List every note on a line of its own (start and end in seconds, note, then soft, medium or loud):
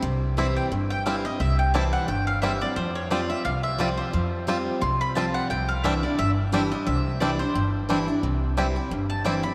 0.02 0.57 C2 medium
0.02 0.68 C3 loud
0.37 0.70 E3 medium
0.37 0.70 G3 medium
0.37 0.46 G3 medium
0.37 0.71 C4 loud
0.37 0.46 C4 medium
0.37 0.71 E4 medium
0.37 0.47 E4 medium
0.37 0.56 E5 medium
0.56 0.66 G5 medium
0.71 1.26 G1 medium
0.71 1.37 G2 loud
0.90 1.05 G5 loud
1.06 1.24 E3 medium
1.06 1.24 G3 medium
1.06 1.15 G3 medium
1.06 1.25 C4 loud
1.06 1.15 C4 medium
1.06 1.24 E4 loud
1.06 1.15 E4 medium
1.06 1.24 F5 medium
1.25 1.40 C4 medium
1.25 1.39 E4 medium
1.25 1.40 D#5 loud
1.40 1.94 C2 medium
1.40 2.05 C3 medium
1.40 1.58 E5 loud
1.59 1.73 G5 medium
1.74 2.07 E3 medium
1.74 2.07 G3 medium
1.74 1.83 G3 medium
1.74 2.07 C4 loud
1.74 1.83 C4 medium
1.74 1.83 E4 medium
1.74 2.08 E4 loud
1.74 1.92 A5 medium
1.93 2.08 F#5 loud
2.08 2.63 G1 medium
2.08 2.74 G2 medium
2.08 2.27 G5 medium
2.27 2.41 F5 loud
2.42 2.61 E3 medium
2.42 2.61 G3 medium
2.42 2.51 G3 medium
2.42 2.61 C4 medium
2.42 2.51 C4 medium
2.42 2.60 E4 loud
2.42 2.52 E4 medium
2.42 2.61 E5 medium
2.61 2.77 C4 medium
2.61 2.76 E4 medium
2.61 2.76 D5 loud
2.76 3.31 F2 medium
2.76 3.09 F3 medium
2.76 2.95 C5 medium
2.95 3.10 C#5 medium
3.10 3.29 F3 medium
3.10 3.29 G3 medium
3.10 3.20 G3 medium
3.10 3.30 C4 loud
3.10 3.20 C4 medium
3.10 3.20 F4 medium
3.10 3.29 F4 loud
3.10 3.30 D5 medium
3.29 3.45 C4 soft
3.29 3.45 F4 medium
3.29 3.44 E5 medium
3.45 3.99 C2 medium
3.45 4.10 C3 medium
3.45 3.63 F5 loud
3.63 3.79 E5 medium
3.78 4.12 F3 loud
3.78 4.12 G3 medium
3.78 3.88 G3 medium
3.78 4.12 C4 loud
3.78 3.88 C4 medium
3.78 4.12 F4 loud
3.78 3.89 F4 medium
3.78 3.97 D5 medium
3.97 4.44 C5 medium
4.13 4.68 F2 medium
4.13 4.46 F3 medium
4.47 4.80 F3 medium
4.47 4.80 G3 medium
4.47 4.56 G3 medium
4.47 4.81 C4 medium
4.47 4.57 C4 medium
4.47 4.81 F4 medium
4.47 4.57 F4 medium
4.81 5.36 C2 medium
4.81 5.47 C3 medium
4.81 5.00 C6 loud
5.01 5.15 B5 loud
5.15 5.49 F3 medium
5.15 5.25 G3 medium
5.15 5.49 G3 loud
5.15 5.25 C4 medium
5.15 5.49 C4 medium
5.15 5.49 F4 loud
5.15 5.25 F4 medium
5.15 5.34 A5 medium
5.34 5.49 F#5 loud
5.50 6.04 C2 medium
5.50 6.16 C3 medium
5.50 5.69 G5 loud
5.69 5.84 F5 loud
5.84 6.03 E3 loud
5.84 6.03 G3 loud
5.84 5.93 G3 medium
5.84 5.93 C4 medium
5.84 6.03 D4 medium
5.84 5.93 D4 medium
5.84 6.02 E4 medium
5.84 6.02 E5 medium
6.03 6.19 D4 medium
6.03 6.18 E4 medium
6.03 6.18 D5 medium
6.18 6.73 G1 medium
6.18 6.84 G2 loud
6.18 6.30 E5 loud
6.52 6.71 E3 loud
6.52 6.71 G3 loud
6.52 6.61 G3 medium
6.52 6.62 C4 medium
6.52 6.71 D4 loud
6.52 6.62 D4 medium
6.52 6.70 E4 loud
6.71 6.87 D4 medium
6.71 6.86 E4 medium
6.71 6.86 D#5 loud
6.87 7.41 C2 loud
6.87 7.52 C3 medium
6.87 7.18 E5 loud
7.20 7.39 E3 loud
7.20 7.39 G3 medium
7.20 7.30 G3 medium
7.20 7.30 C4 medium
7.20 7.40 D4 medium
7.20 7.30 D4 medium
7.20 7.39 E4 loud
7.20 7.39 D5 medium
7.39 7.55 D4 soft
7.39 7.55 E4 medium
7.39 7.71 C5 loud
7.55 8.09 G1 medium
7.55 8.20 G2 loud
7.89 8.07 E3 loud
7.89 8.07 G3 medium
7.89 7.98 G3 medium
7.89 7.98 C4 medium
7.89 8.08 D4 loud
7.89 7.98 D4 medium
7.89 8.07 E4 loud
8.08 8.23 D4 medium
8.08 8.22 E4 medium
8.23 8.77 C2 medium
8.23 8.88 C3 medium
8.57 8.75 E3 medium
8.57 8.76 G3 medium
8.57 8.66 G3 medium
8.57 8.76 C4 medium
8.57 8.66 C4 medium
8.57 8.66 E4 medium
8.57 8.75 E4 medium
8.76 8.91 C4 medium
8.76 8.90 E4 medium
8.91 9.45 G1 medium
8.91 9.54 G2 loud
9.10 9.24 A5 loud
9.25 9.43 E3 medium
9.25 9.44 G3 loud
9.25 9.34 G3 medium
9.25 9.44 C4 medium
9.25 9.34 C4 medium
9.25 9.34 E4 medium
9.25 9.43 E4 loud
9.25 9.43 G5 medium
9.43 9.54 C4 medium
9.43 9.54 E4 medium
9.43 9.54 B5 loud